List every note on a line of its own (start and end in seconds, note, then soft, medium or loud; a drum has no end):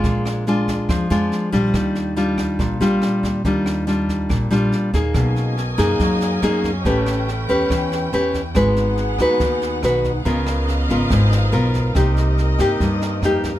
0.00 0.85 A#1 loud
0.00 0.44 G#3 medium
0.00 0.44 D4 medium
0.00 0.44 F4 medium
0.00 kick medium
0.00 snare soft
0.05 0.87 A#2 soft
0.25 cross-stick medium
0.25 snare soft
0.47 1.07 G#3 soft
0.47 1.08 D4 medium
0.47 1.08 F4 medium
0.47 snare soft
0.68 kick soft
0.68 snare soft
0.89 1.09 F2 medium
0.89 1.72 F3 medium
0.89 kick medium
0.89 cross-stick medium
0.89 snare soft
1.10 1.30 F2 medium
1.10 1.49 G#3 medium
1.10 1.50 D4 medium
1.10 1.50 F4 medium
1.10 snare soft
1.32 snare soft
1.52 1.73 A#1 medium
1.52 2.13 G3 medium
1.52 2.14 D4 medium
1.52 2.14 F4 medium
1.52 kick soft
1.52 snare soft
1.74 2.55 D#2 medium
1.74 2.58 D#3 soft
1.74 kick medium
1.74 cross-stick medium
1.74 snare soft
1.95 snare soft
2.16 2.77 G3 medium
2.16 2.77 D4 medium
2.16 2.77 F4 medium
2.16 snare soft
2.38 kick soft
2.38 cross-stick medium
2.38 snare soft
2.59 2.79 A#1 medium
2.59 3.43 A#2 medium
2.59 kick medium
2.59 snare soft
2.80 3.00 A#1 medium
2.80 3.41 G3 medium
2.80 3.41 D4 medium
2.80 3.42 F4 medium
2.80 snare soft
3.02 cross-stick medium
3.02 snare soft
3.23 3.43 D#2 medium
3.23 kick soft
3.23 snare soft
3.45 4.26 D#2 medium
3.45 4.28 D#3 medium
3.45 3.84 G3 soft
3.45 3.84 D4 soft
3.45 3.85 F4 medium
3.45 kick medium
3.45 snare soft
3.66 cross-stick medium
3.66 snare soft
3.87 4.48 G3 medium
3.87 4.48 D4 medium
3.87 4.48 F4 medium
3.87 snare soft
4.09 kick soft
4.09 snare soft
4.29 4.50 A#1 medium
4.29 5.13 A#2 soft
4.29 kick medium
4.29 cross-stick medium
4.29 snare soft
4.51 4.71 A#1 medium
4.51 4.90 G3 medium
4.51 4.90 D4 medium
4.51 4.91 F4 medium
4.51 snare soft
4.72 snare soft
4.93 5.13 D#2 medium
4.93 5.54 A#3 medium
4.93 5.54 D#4 medium
4.93 5.54 G#4 medium
4.93 kick soft
4.93 snare soft
5.14 5.75 B1 medium
5.14 5.98 B2 medium
5.14 8.52 C#4 medium
5.14 6.84 A#4 medium
5.14 6.84 D#5 medium
5.14 6.84 G#5 medium
5.14 kick medium
5.14 cross-stick medium
5.14 snare soft
5.36 snare soft
5.57 snare soft
5.78 5.98 F#2 medium
5.78 6.39 A#3 medium
5.78 6.39 D#4 medium
5.78 6.39 G#4 medium
5.78 kick soft
5.78 cross-stick medium
5.78 snare soft
6.00 6.39 F#2 medium
6.00 6.83 F#3 medium
6.00 kick medium
6.00 snare soft
6.21 snare soft
6.42 6.82 F#2 medium
6.42 6.70 A#3 medium
6.42 6.70 D#4 medium
6.42 6.71 G#4 medium
6.42 cross-stick medium
6.42 snare soft
6.64 kick soft
6.64 snare soft
6.85 7.45 A1 medium
6.85 7.68 A3 medium
6.85 7.28 C#4 medium
6.85 7.28 G4 medium
6.85 8.54 B4 medium
6.85 7.28 B4 medium
6.85 8.53 G5 medium
6.85 kick medium
6.85 snare soft
7.06 cross-stick medium
7.06 snare soft
7.28 snare soft
7.49 7.69 E2 medium
7.49 8.09 C#4 medium
7.49 8.10 G4 medium
7.49 8.10 B4 medium
7.49 kick soft
7.49 snare soft
7.70 8.10 E2 medium
7.70 8.53 E3 medium
7.70 kick medium
7.70 cross-stick medium
7.70 snare soft
7.92 snare soft
8.13 8.52 E2 medium
8.13 8.40 C#4 medium
8.13 8.40 G4 medium
8.13 8.41 B4 medium
8.13 snare soft
8.34 kick soft
8.34 snare soft
8.55 9.15 G#1 medium
8.55 9.38 G#3 medium
8.55 10.24 B3 medium
8.55 9.16 D#4 soft
8.55 9.16 F#4 medium
8.55 10.24 G#4 medium
8.55 9.16 B4 medium
8.55 10.23 F#5 medium
8.55 kick medium
8.55 cross-stick medium
8.55 snare soft
8.76 snare soft
8.97 snare soft
9.18 9.39 D#2 medium
9.18 9.80 D#4 medium
9.18 9.80 F#4 medium
9.18 9.81 B4 medium
9.18 kick soft
9.18 cross-stick medium
9.18 snare soft
9.40 9.80 D#2 medium
9.40 10.24 D#3 medium
9.40 kick medium
9.40 snare soft
9.62 snare soft
9.83 10.22 B1 medium
9.83 10.11 D#4 medium
9.83 10.11 F#4 medium
9.83 10.11 B4 medium
9.83 cross-stick medium
9.83 snare soft
10.04 kick soft
10.04 snare soft
10.25 10.85 C#2 medium
10.25 11.08 C#3 medium
10.25 10.86 B3 medium
10.25 11.94 B3 medium
10.25 10.86 F4 medium
10.25 13.59 A#4 medium
10.25 10.86 A#4 medium
10.25 11.93 D#5 medium
10.25 11.94 F5 medium
10.25 kick medium
10.25 snare soft
10.46 cross-stick medium
10.46 snare soft
10.68 snare soft
10.89 11.09 G#1 medium
10.89 11.50 B3 medium
10.89 11.50 F4 medium
10.89 11.51 A#4 medium
10.89 kick soft
10.89 snare soft
11.10 11.50 G#1 medium
11.10 11.93 G#2 medium
11.10 kick medium
11.10 cross-stick medium
11.10 snare soft
11.32 snare soft
11.52 11.92 B1 medium
11.52 11.92 B3 medium
11.52 11.92 F4 medium
11.52 11.92 A#4 medium
11.52 snare soft
11.74 kick soft
11.74 snare soft
11.94 12.55 C2 medium
11.94 12.78 C3 medium
11.94 12.56 A#3 medium
11.94 13.59 C4 medium
11.94 12.56 D#4 medium
11.94 12.56 G4 medium
11.94 13.59 D#5 medium
11.94 kick medium
11.94 cross-stick medium
11.94 snare soft
12.17 snare soft
12.38 snare soft
12.59 12.79 G2 medium
12.59 13.20 A#3 medium
12.59 13.20 D#4 medium
12.59 13.20 G4 medium
12.59 kick soft
12.59 cross-stick medium
12.59 snare soft
12.80 13.20 G2 medium
12.80 13.59 G2 medium
12.80 kick medium
12.80 snare soft
13.01 snare soft
13.22 13.59 F2 medium
13.22 13.51 A#3 medium
13.22 13.51 D#4 medium
13.22 13.51 G4 medium
13.22 cross-stick medium
13.22 snare soft
13.44 kick soft
13.44 snare soft